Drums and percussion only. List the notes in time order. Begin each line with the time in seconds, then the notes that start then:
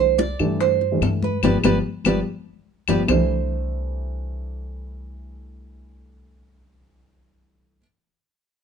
0.19 high bongo, high conga
0.39 high bongo, high conga, claves
0.61 high bongo, high conga
0.81 high bongo, high conga
1.02 high bongo, low bongo, high conga, claves
1.23 high conga
1.43 low bongo, high conga, claves
1.64 low bongo, high conga, claves
2.05 low bongo, high conga, claves
2.88 low bongo, high conga, claves
3.08 low bongo, low conga, claves